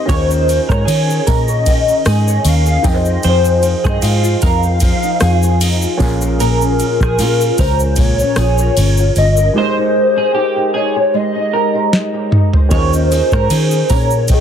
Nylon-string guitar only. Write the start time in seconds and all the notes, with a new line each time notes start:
Already playing: D#4 G4 C5
0.07 D#3
0.29 C#4
0.46 G#4
0.69 C#5
0.86 C#4
1.08 G#4
1.26 C#4
1.47 C#5
1.66 D#3
1.87 C#4
2.06 G#4
2.27 C#5
2.44 C#4
2.66 G#4
2.83 F3
3.06 C5
3.24 F3
3.44 D#4
3.62 F4
3.84 C5
4.02 D#4
4.23 F4
4.42 D#4
4.64 C5
4.81 F3
5.03 D#4
5.21 F4
5.43 C5
5.62 D#4
5.83 F4
6.00 A#2
6.21 A#4
6.39 A#2
6.60 C#4
6.78 F4
7.00 A#4
7.18 C#4
7.41 F4
7.58 C#4
7.80 A#4
7.98 A#2
8.21 C#4
8.38 F4
8.60 A#4
8.76 C#4
8.99 F4
9.17 C#4
9.38 A#4
9.55 G#3
9.77 D#4
9.96 G4
10.17 C5
10.33 D#4
10.56 G4
10.75 D#4
10.96 C5
11.14 G#3
11.35 D#4
11.53 G4
11.74 C5
11.92 D#4
12.13 G4
12.31 D#4
12.53 C5
12.71 D#3
12.93 C#4
13.11 G#4
13.32 A#4
13.50 C#4
13.71 G#4
13.90 C#4
14.11 A#4
14.29 D#3